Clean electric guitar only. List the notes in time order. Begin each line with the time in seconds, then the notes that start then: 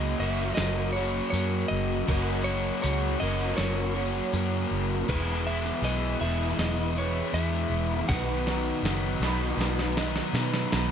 Already playing: D#5
0.20 E5
0.55 D#5
0.93 C#5
1.30 C#5
1.68 D#5
2.44 C#5
2.82 C#5
3.20 D#5
3.57 C#5
5.10 B4
5.47 E5
5.85 D#5
6.21 E5
6.59 D#5
6.98 C#5
7.34 E5
8.09 F#5